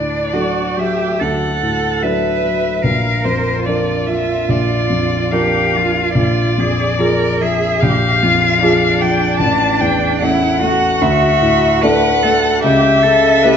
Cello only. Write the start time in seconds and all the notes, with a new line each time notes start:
Already playing: D4
0.33 F#4
0.78 G4
1.20 A4
2.03 B4
2.82 A#4
3.65 F4
5.33 G4
5.76 F4
6.18 F4
6.60 G#4
7.00 A#4
7.42 G#4
7.82 G4
8.23 F4
8.61 D4
10.24 E4
10.63 F#4
11.81 B4
12.23 A4
12.61 G4
13.02 A4
13.43 B4